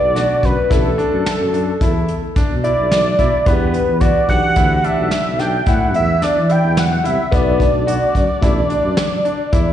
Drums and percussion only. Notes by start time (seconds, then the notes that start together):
0.16 snare, closed hi-hat
0.43 kick, closed hi-hat
0.71 kick, snare, closed hi-hat
0.99 closed hi-hat
1.26 snare, closed hi-hat
1.54 closed hi-hat
1.81 kick, closed hi-hat
2.08 closed hi-hat
2.36 kick, snare, closed hi-hat
2.64 closed hi-hat
2.92 snare, closed hi-hat
3.19 kick, closed hi-hat
3.46 kick, closed hi-hat
3.74 closed hi-hat
4.01 kick, closed hi-hat
4.29 kick, closed hi-hat
4.56 kick, closed hi-hat
4.84 closed hi-hat
5.11 snare, closed hi-hat
5.39 snare, closed hi-hat
5.66 kick, closed hi-hat
5.94 closed hi-hat
6.22 snare, closed hi-hat
6.50 closed hi-hat
6.77 snare, closed hi-hat
7.05 closed hi-hat
7.32 kick, closed hi-hat
7.60 kick, closed hi-hat
7.88 closed hi-hat
8.15 kick, closed hi-hat
8.43 kick, snare, closed hi-hat
8.70 closed hi-hat
8.97 snare, closed hi-hat
9.25 closed hi-hat
9.53 kick, closed hi-hat